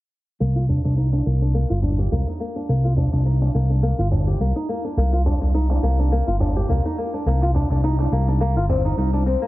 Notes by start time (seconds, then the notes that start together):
0.40 C2 A#3, shaker
0.56 F4
0.69 D4, darbuka ka, darbuka tek, darbuka dum, shaker
0.84 C2 D4, darbuka ka, shaker
0.97 D#4, shaker
1.13 D4, darbuka tek
1.26 C2 A#3, shaker
1.42 D4, shaker
1.54 A#3, shaker
1.70 G1 F4, shaker
1.82 D4, darbuka dum, shaker
1.99 G4, shaker
2.12 C2 A#3, darbuka dum, shaker
2.27 D#4, shaker
2.40 A#3, shaker
2.56 D4, shaker
2.69 C2 A#3, shaker
2.84 F4, darbuka tek, shaker
2.97 D4, darbuka dum, shaker
3.13 C2 D4, darbuka ka, shaker
3.26 D#4, shaker
3.41 D4, darbuka tek, shaker
3.54 C2 A#3, shaker
3.70 D4, shaker
3.83 A#3, shaker
3.98 G1 F4, shaker
4.11 D4, darbuka dum, shaker
4.27 G4, shaker
4.40 C2 A#3, shaker
4.56 D#4, shaker
4.69 A#3, shaker
4.84 D4, shaker
4.97 C2 A#3, shaker
5.13 F4, shaker
5.25 D4, darbuka ka, darbuka tek, darbuka dum, shaker
5.41 C2 D4, darbuka ka, shaker
5.54 D#4, shaker
5.70 D4, darbuka tek, shaker
5.83 C2 A#3, shaker
5.99 D4, shaker
6.12 A#3, shaker
6.27 G1 F4, shaker
6.40 D4, darbuka dum, shaker
6.56 G4, shaker
6.68 C2 A#3, darbuka dum, shaker
6.85 D#4, shaker
6.98 A#3, shaker
7.14 D4, shaker
7.26 C2 A#3, shaker
7.42 F4, darbuka tek, shaker
7.54 D4, darbuka dum, shaker
7.70 C2 D4, darbuka ka, shaker
7.84 D#4, shaker
7.99 D4, darbuka tek, shaker
8.11 C2 A#3, shaker
8.28 D4, shaker
8.41 A#3, shaker
8.56 G1 F4, shaker
8.69 C4, darbuka dum, shaker
8.85 D#4, shaker
8.97 C2 D#4, shaker
9.13 D4, shaker
9.26 C4, shaker
9.42 A#3, shaker